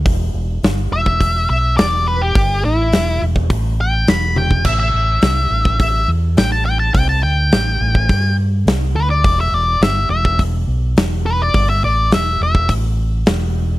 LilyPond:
<<
  \new Staff \with { instrumentName = "Lead electric guitar" } { \time 4/4 \key a \major \tempo 4 = 104 r4. e''4 e''8 d''8 b'16 g'16~ | g'8 e'4 r4 g''8 b''8 g''8 | e''16 e''4.~ e''16 e''8 r8 g''16 a''16 g''16 a''16 | g''16 a''16 g''2 r4 b'16 d''16~ |
d''16 e''16 d''8 e''8 e''8 r4. b'16 d''16~ | d''16 e''16 d''8 e''8 e''8 r2 | }
  \new Staff \with { instrumentName = "Fingered electric bass" } { \clef bass \time 4/4 \key a \major e,,8 e,,8 g,,8 e,,4 b,,8 e,,4 | g,,8 a,,8 e,,8 e,,8 a,,4 e,,4 | a,,8 a,,8 c,8 a,,4 e,8 a,,4 | c,8 d,8 a,,8 a,,8 g,4 c,8 d,8 |
e,,8 e,,8 g,,8 e,,4 b,,8 e,,4 | g,,8 a,,8 e,,8 e,,8 a,,4 e,,4 | }
  \new DrumStaff \with { instrumentName = "Drums" } \drummode { \time 4/4 <hho bd>4 <hho sn>8. bd16 <hho bd>4 <hho sn>4 | <hho bd>4 <hho sn>8. bd16 <hho bd>4 <hho sn>8 tommh16 bd16 | <cymc bd>4 <hho sn>8. bd16 <hho bd>4 <hho sn>4 | <hho bd>4 <hho sn>8. bd16 <hho bd>4 <hho sn>4 |
<hho bd>4 <hho sn>8. bd16 <hho bd>4 <hho sn>4 | <hho bd>4 <hho sn>8. bd16 <hho bd>4 <hho sn>4 | }
>>